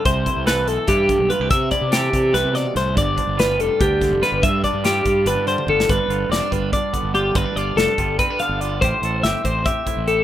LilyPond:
<<
  \new Staff \with { instrumentName = "Clean electric guitar" } { \time 7/8 \key g \mixolydian \tempo 4 = 144 c''4 b'8 a'8 g'4 b'8 | e''8 d''8 g'4 b'8 d''8 c''8 | d''4 b'8 a'8 g'4 b'8 | e''8 d''8 g'4 b'8 c''8 a'8 |
b'4 d''8 b'8 d''4 g'8 | b'8 d''8 a'4 b'8 f''8 d''8 | c''4 e''8 c''8 e''4 a'8 | }
  \new Staff \with { instrumentName = "Clean electric guitar" } { \time 7/8 \key g \mixolydian << { r8 e'8 a'4 e'4 f'16 g'16 | r8 e'8 a'2~ a'8 | r8 d'8 f'4 d'4 f'8~ | f'8 d'8 f'4 d'4 f'8 |
d'8 f'8 c'16 d'16 f'8 d'8 b8 f'8 | c'16 d'16 f'8 d'8 f'8 c'16 d'16 b8 f'8 | g'8 a'8 g'8 g'8 g'8 e'8 g'8 | } \\ { c4 e4. g,4 | c4 e4 c8 b,8 a,8 | g,4 g4. d4 | g,4 g4. d4 |
g,4. g4 d4 | g,4. g4 d4 | a,4. c'4 a,4 | } >> }
  \new Staff \with { instrumentName = "Fingered electric bass" } { \clef bass \time 7/8 \key g \mixolydian c,8 r16 c,8. b,,16 r16 g,8. b,,16 r16 c,16 | c8 r16 c8. c8 c,16 c8 r16 c,8 | g,,8 r16 g,,8. f,,16 r16 d,8. f,,16 r16 g,,16 | g,8 r16 g,8. g,8 g,,16 g,8 r16 g,,8 |
g,,16 r16 g,,8 f,,16 r16 g,,8 r8. g,,8. | g,,16 r16 g,,8 f,,16 r16 g,,8 r8. g,,8. | a,,16 r16 a,,8 g,,16 r16 a,,8 r8. a,,8. | }
  \new DrumStaff \with { instrumentName = "Drums" } \drummode { \time 7/8 <hh bd>8 <hh bd>8 <hh sn>8 hh8 <hh bd>8 <hh bd>8 hh8 | <hh bd>8 <hh bd>8 <hh sn>8 <hh bd>8 <hh sn>8 <hh sn>8 <hh sn>8 | <hh bd>8 <hh bd>8 <hh sn>8 hh8 <hh bd>8 <hh bd sn>8 <hh sn>8 | <hh bd>8 <hh bd>8 <hh sn>8 <hh bd>8 hh8 hh16 tommh16 toml16 sn16 |
<hh bd>8 hh8 <hh sn>8 <hh bd>8 <hh bd>8 <hh bd>8 hh8 | <hh bd>8 hh8 <hh sn>8 <hh bd>8 <hh bd>8 hh8 hh8 | <hh bd>8 hh8 <hh sn>8 <hh bd>8 <hh bd>8 <hh bd>8 hh8 | }
>>